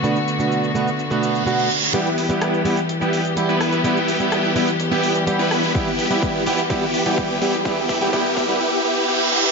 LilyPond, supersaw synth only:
\new Staff \with { instrumentName = "Supersaw synth" } { \time 4/4 \key e \minor \tempo 4 = 126 r1 | <b e' g'>8. <b e' g'>8. <b e' g'>16 r8 <b e' g'>8 r8 <b e' b'>8. | <b e' g'>8. <b e' g'>8. <b e' g'>16 r8 <b e' g'>8 r8 <b e' b'>8. | <b e' g'>8. <b e' g'>8. <b e' g'>16 r16 <b e' g'>8. <b e' g'>8. <b e' g'>16 r16 |
<b e' g'>8. <b e' g'>16 <b e' g'>8. <b e' g'>16 <b e' g'>8 <b e' g'>8 <b e' g'>8 <b e' g'>8 | }